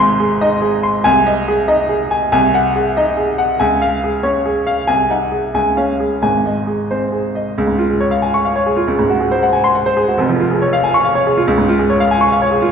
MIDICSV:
0, 0, Header, 1, 2, 480
1, 0, Start_track
1, 0, Key_signature, -5, "major"
1, 0, Tempo, 425834
1, 1184, Time_signature, 6, 3, 24, 8
1, 5497, Tempo, 447427
1, 9337, Tempo, 427350
1, 14123, End_track
2, 0, Start_track
2, 0, Title_t, "Grand piano"
2, 0, Program_c, 0, 0
2, 0, Control_c, 0, 64, 127
2, 0, Note_on_c, 0, 32, 79
2, 0, Note_on_c, 0, 44, 80
2, 0, Note_on_c, 0, 80, 78
2, 0, Note_on_c, 0, 84, 98
2, 119, Note_off_c, 0, 80, 0
2, 226, Note_on_c, 0, 68, 66
2, 360, Note_off_c, 0, 84, 0
2, 464, Note_on_c, 0, 63, 75
2, 467, Note_on_c, 0, 75, 85
2, 606, Note_off_c, 0, 68, 0
2, 696, Note_on_c, 0, 68, 73
2, 847, Note_off_c, 0, 63, 0
2, 849, Note_off_c, 0, 75, 0
2, 939, Note_on_c, 0, 84, 74
2, 1086, Note_off_c, 0, 68, 0
2, 1134, Note_off_c, 0, 32, 0
2, 1140, Note_off_c, 0, 44, 0
2, 1175, Note_on_c, 0, 80, 108
2, 1181, Note_on_c, 0, 36, 88
2, 1182, Note_off_c, 0, 84, 0
2, 1206, Control_c, 0, 64, 0
2, 1364, Control_c, 0, 64, 127
2, 1426, Note_on_c, 0, 75, 75
2, 1561, Note_off_c, 0, 80, 0
2, 1671, Note_on_c, 0, 68, 78
2, 1804, Note_off_c, 0, 75, 0
2, 1895, Note_on_c, 0, 63, 73
2, 1895, Note_on_c, 0, 75, 82
2, 2045, Note_off_c, 0, 68, 0
2, 2131, Note_on_c, 0, 68, 65
2, 2277, Note_off_c, 0, 63, 0
2, 2277, Note_off_c, 0, 75, 0
2, 2378, Note_on_c, 0, 80, 79
2, 2516, Note_off_c, 0, 68, 0
2, 2570, Note_off_c, 0, 36, 0
2, 2601, Note_off_c, 0, 80, 0
2, 2617, Note_on_c, 0, 36, 92
2, 2618, Note_on_c, 0, 80, 100
2, 2634, Control_c, 0, 64, 0
2, 2836, Control_c, 0, 64, 127
2, 2867, Note_on_c, 0, 78, 77
2, 3000, Note_off_c, 0, 80, 0
2, 3105, Note_on_c, 0, 68, 65
2, 3245, Note_off_c, 0, 78, 0
2, 3347, Note_on_c, 0, 63, 76
2, 3347, Note_on_c, 0, 75, 74
2, 3485, Note_off_c, 0, 68, 0
2, 3574, Note_on_c, 0, 68, 64
2, 3724, Note_off_c, 0, 75, 0
2, 3725, Note_off_c, 0, 63, 0
2, 3813, Note_on_c, 0, 78, 71
2, 3956, Note_off_c, 0, 68, 0
2, 4011, Note_off_c, 0, 36, 0
2, 4051, Note_off_c, 0, 78, 0
2, 4053, Note_on_c, 0, 80, 85
2, 4060, Note_on_c, 0, 37, 73
2, 4074, Control_c, 0, 64, 0
2, 4253, Control_c, 0, 64, 127
2, 4302, Note_on_c, 0, 77, 67
2, 4434, Note_off_c, 0, 80, 0
2, 4553, Note_on_c, 0, 68, 61
2, 4679, Note_off_c, 0, 77, 0
2, 4772, Note_on_c, 0, 73, 69
2, 4775, Note_on_c, 0, 61, 58
2, 4926, Note_off_c, 0, 68, 0
2, 5022, Note_on_c, 0, 68, 59
2, 5156, Note_off_c, 0, 73, 0
2, 5158, Note_off_c, 0, 61, 0
2, 5259, Note_on_c, 0, 77, 71
2, 5405, Note_off_c, 0, 68, 0
2, 5458, Note_off_c, 0, 37, 0
2, 5495, Note_on_c, 0, 80, 88
2, 5500, Note_off_c, 0, 77, 0
2, 5501, Note_on_c, 0, 36, 62
2, 5519, Control_c, 0, 64, 0
2, 5687, Control_c, 0, 64, 127
2, 5737, Note_on_c, 0, 63, 55
2, 5743, Note_on_c, 0, 78, 55
2, 5873, Note_off_c, 0, 80, 0
2, 5970, Note_on_c, 0, 68, 48
2, 6115, Note_off_c, 0, 63, 0
2, 6118, Note_off_c, 0, 78, 0
2, 6190, Note_off_c, 0, 36, 0
2, 6210, Note_off_c, 0, 68, 0
2, 6212, Note_on_c, 0, 37, 60
2, 6216, Note_on_c, 0, 80, 74
2, 6229, Control_c, 0, 64, 0
2, 6390, Control_c, 0, 64, 127
2, 6455, Note_on_c, 0, 77, 49
2, 6460, Note_on_c, 0, 61, 47
2, 6601, Note_off_c, 0, 80, 0
2, 6704, Note_on_c, 0, 68, 50
2, 6844, Note_off_c, 0, 77, 0
2, 6846, Note_off_c, 0, 61, 0
2, 6920, Note_off_c, 0, 37, 0
2, 6938, Note_on_c, 0, 32, 55
2, 6944, Note_on_c, 0, 80, 71
2, 6945, Note_off_c, 0, 68, 0
2, 6946, Note_on_c, 0, 44, 55
2, 6964, Control_c, 0, 64, 0
2, 7165, Control_c, 0, 64, 127
2, 7194, Note_on_c, 0, 75, 48
2, 7335, Note_off_c, 0, 80, 0
2, 7423, Note_on_c, 0, 68, 41
2, 7580, Note_off_c, 0, 75, 0
2, 7675, Note_on_c, 0, 72, 50
2, 7676, Note_on_c, 0, 60, 45
2, 7814, Note_off_c, 0, 68, 0
2, 7904, Note_on_c, 0, 68, 45
2, 8061, Note_off_c, 0, 72, 0
2, 8062, Note_off_c, 0, 60, 0
2, 8153, Note_on_c, 0, 75, 46
2, 8296, Note_off_c, 0, 68, 0
2, 8352, Note_off_c, 0, 32, 0
2, 8355, Note_off_c, 0, 44, 0
2, 8393, Note_off_c, 0, 75, 0
2, 8395, Note_on_c, 0, 37, 75
2, 8414, Control_c, 0, 64, 0
2, 8497, Note_on_c, 0, 44, 53
2, 8589, Control_c, 0, 64, 127
2, 8616, Note_on_c, 0, 65, 54
2, 8693, Note_off_c, 0, 44, 0
2, 8739, Note_on_c, 0, 68, 46
2, 8812, Note_off_c, 0, 65, 0
2, 8853, Note_on_c, 0, 73, 60
2, 8933, Note_off_c, 0, 68, 0
2, 8967, Note_on_c, 0, 77, 60
2, 9049, Note_off_c, 0, 73, 0
2, 9086, Note_on_c, 0, 80, 67
2, 9164, Note_off_c, 0, 77, 0
2, 9213, Note_on_c, 0, 85, 75
2, 9282, Note_off_c, 0, 80, 0
2, 9328, Note_on_c, 0, 77, 50
2, 9407, Note_off_c, 0, 85, 0
2, 9451, Note_on_c, 0, 73, 63
2, 9528, Note_off_c, 0, 77, 0
2, 9571, Note_on_c, 0, 68, 64
2, 9651, Note_off_c, 0, 73, 0
2, 9686, Note_on_c, 0, 65, 57
2, 9772, Note_off_c, 0, 68, 0
2, 9782, Note_off_c, 0, 37, 0
2, 9810, Note_on_c, 0, 37, 71
2, 9817, Note_off_c, 0, 65, 0
2, 9849, Control_c, 0, 64, 0
2, 9937, Note_on_c, 0, 44, 62
2, 10018, Control_c, 0, 64, 127
2, 10055, Note_on_c, 0, 66, 58
2, 10136, Note_off_c, 0, 44, 0
2, 10177, Note_on_c, 0, 68, 58
2, 10255, Note_off_c, 0, 66, 0
2, 10301, Note_on_c, 0, 72, 62
2, 10377, Note_off_c, 0, 68, 0
2, 10428, Note_on_c, 0, 78, 63
2, 10499, Note_off_c, 0, 72, 0
2, 10540, Note_on_c, 0, 80, 67
2, 10623, Note_off_c, 0, 78, 0
2, 10666, Note_on_c, 0, 84, 88
2, 10740, Note_off_c, 0, 80, 0
2, 10788, Note_on_c, 0, 78, 58
2, 10864, Note_off_c, 0, 84, 0
2, 10913, Note_on_c, 0, 72, 69
2, 10985, Note_off_c, 0, 78, 0
2, 11035, Note_on_c, 0, 68, 69
2, 11108, Note_off_c, 0, 72, 0
2, 11163, Note_on_c, 0, 66, 59
2, 11226, Note_off_c, 0, 37, 0
2, 11229, Note_off_c, 0, 68, 0
2, 11268, Note_on_c, 0, 29, 80
2, 11281, Note_off_c, 0, 66, 0
2, 11281, Note_on_c, 0, 41, 78
2, 11300, Control_c, 0, 64, 0
2, 11400, Note_on_c, 0, 53, 65
2, 11483, Control_c, 0, 64, 127
2, 11520, Note_on_c, 0, 65, 61
2, 11591, Note_off_c, 0, 53, 0
2, 11644, Note_on_c, 0, 68, 59
2, 11711, Note_off_c, 0, 65, 0
2, 11764, Note_on_c, 0, 73, 68
2, 11833, Note_off_c, 0, 68, 0
2, 11889, Note_on_c, 0, 77, 75
2, 11953, Note_off_c, 0, 73, 0
2, 12010, Note_on_c, 0, 80, 74
2, 12074, Note_off_c, 0, 77, 0
2, 12130, Note_on_c, 0, 85, 95
2, 12195, Note_off_c, 0, 80, 0
2, 12244, Note_on_c, 0, 77, 62
2, 12315, Note_off_c, 0, 85, 0
2, 12366, Note_on_c, 0, 73, 70
2, 12431, Note_off_c, 0, 77, 0
2, 12494, Note_on_c, 0, 68, 72
2, 12552, Note_off_c, 0, 73, 0
2, 12615, Note_on_c, 0, 65, 68
2, 12666, Note_off_c, 0, 29, 0
2, 12673, Note_off_c, 0, 41, 0
2, 12676, Note_off_c, 0, 68, 0
2, 12724, Note_off_c, 0, 65, 0
2, 12727, Note_on_c, 0, 37, 94
2, 12732, Control_c, 0, 64, 0
2, 12844, Note_on_c, 0, 44, 69
2, 12910, Control_c, 0, 64, 127
2, 12965, Note_on_c, 0, 65, 70
2, 13029, Note_off_c, 0, 44, 0
2, 13083, Note_on_c, 0, 68, 62
2, 13149, Note_off_c, 0, 65, 0
2, 13203, Note_on_c, 0, 73, 71
2, 13267, Note_off_c, 0, 68, 0
2, 13319, Note_on_c, 0, 77, 77
2, 13386, Note_off_c, 0, 73, 0
2, 13443, Note_on_c, 0, 80, 84
2, 13503, Note_off_c, 0, 77, 0
2, 13552, Note_on_c, 0, 85, 90
2, 13623, Note_off_c, 0, 80, 0
2, 13676, Note_on_c, 0, 77, 64
2, 13737, Note_off_c, 0, 85, 0
2, 13787, Note_on_c, 0, 73, 71
2, 13859, Note_off_c, 0, 77, 0
2, 13898, Note_on_c, 0, 68, 67
2, 13974, Note_off_c, 0, 73, 0
2, 14016, Note_on_c, 0, 65, 71
2, 14089, Note_off_c, 0, 68, 0
2, 14102, Note_off_c, 0, 37, 0
2, 14123, Note_off_c, 0, 65, 0
2, 14123, End_track
0, 0, End_of_file